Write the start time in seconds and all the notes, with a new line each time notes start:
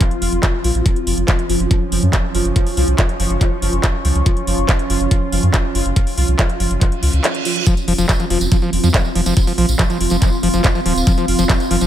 Already playing: F3 C4 F4 F5 C6
0.01 kick, clap, closed hi-hat
0.11 closed hi-hat
0.22 F1, open hi-hat
0.32 F1, closed hi-hat
0.43 kick, clap, closed hi-hat
0.64 A#1, open hi-hat
0.75 A#1, closed hi-hat
0.86 C#4, kick, closed hi-hat
0.96 closed hi-hat
1.07 F#1, open hi-hat
1.18 F#1, closed hi-hat
1.28 kick, clap, closed hi-hat
1.39 closed hi-hat
1.50 F#1, open hi-hat
1.60 F#1, closed hi-hat
1.65 C#6
1.71 kick, closed hi-hat
1.92 F#1, open hi-hat
2.03 F#2, closed hi-hat
2.13 kick, clap, closed hi-hat
2.35 F#1, open hi-hat
2.45 F#1, closed hi-hat
2.56 kick, closed hi-hat
2.67 open hi-hat
2.77 C2, open hi-hat
2.88 C2, closed hi-hat
2.98 kick, clap, closed hi-hat
3.09 closed hi-hat
3.20 F#1, open hi-hat
3.30 F#1, closed hi-hat
3.41 kick, clap, closed hi-hat
3.62 F#1, open hi-hat
3.73 F#1, closed hi-hat
3.84 kick, clap, closed hi-hat
4.05 C#2, open hi-hat
4.15 C#2, closed hi-hat
4.26 kick, closed hi-hat
4.37 closed hi-hat
4.47 F#1, open hi-hat
4.58 F#1, closed hi-hat
4.69 kick, clap, closed hi-hat
4.79 closed hi-hat
4.90 F#1, open hi-hat
5.01 F#1, closed hi-hat
5.11 kick, closed hi-hat
5.32 F#1, open hi-hat
5.43 F#2, closed hi-hat
5.54 kick, clap, closed hi-hat
5.75 F#1, open hi-hat
5.86 F#1, closed hi-hat
5.96 kick, closed hi-hat
6.07 open hi-hat
6.18 C2, open hi-hat
6.28 C2, closed hi-hat
6.39 kick, clap, closed hi-hat
6.50 closed hi-hat
6.60 F#1, open hi-hat
6.71 F#1, closed hi-hat
6.81 kick, clap, closed hi-hat, reverse cymbal
6.92 closed hi-hat
7.03 C#2, open hi-hat
7.13 C#2, closed hi-hat
7.24 clap, closed hi-hat
7.35 closed hi-hat
7.45 open hi-hat
7.56 closed hi-hat
7.67 F3 C4 F4, kick, closed hi-hat, tambourine
7.77 F4, closed hi-hat, tambourine
7.88 F1 F3 C6, open hi-hat
7.98 F1 F3, closed hi-hat, tambourine
8.09 kick, clap, closed hi-hat, tambourine
8.20 F3, closed hi-hat, tambourine
8.30 F1 F3, open hi-hat
8.41 F1, closed hi-hat, tambourine
8.52 F3, kick, closed hi-hat
8.62 F3, tambourine
8.73 F1, open hi-hat
8.84 F2 F3 F5, closed hi-hat, tambourine
8.94 F3, kick, clap, closed hi-hat, tambourine
9.05 tambourine
9.15 F1 F3, open hi-hat
9.26 F1 F3, closed hi-hat, tambourine
9.37 kick, closed hi-hat, tambourine
9.47 F3, open hi-hat, tambourine
9.58 A#1 F3, open hi-hat
9.69 A#1, closed hi-hat, tambourine
9.79 F3, kick, clap, closed hi-hat, tambourine
9.90 F3, closed hi-hat, tambourine
10.01 F1, open hi-hat
10.10 F1 F3, closed hi-hat, tambourine
10.22 F3, kick, clap, closed hi-hat, tambourine
10.32 tambourine
10.43 F1 F3, open hi-hat
10.53 F1 F3, closed hi-hat, tambourine
10.64 kick, clap, closed hi-hat, tambourine
10.75 F3, tambourine
10.86 D#1 F3, open hi-hat
10.96 D#1, closed hi-hat, tambourine
11.07 F3, kick, closed hi-hat, tambourine
11.18 F3, closed hi-hat, tambourine
11.28 F1, open hi-hat
11.39 F1 F3, closed hi-hat, tambourine
11.49 F3, kick, clap, closed hi-hat, tambourine
11.60 closed hi-hat, tambourine
11.71 F1 F3, open hi-hat
11.81 F1 F3, closed hi-hat, tambourine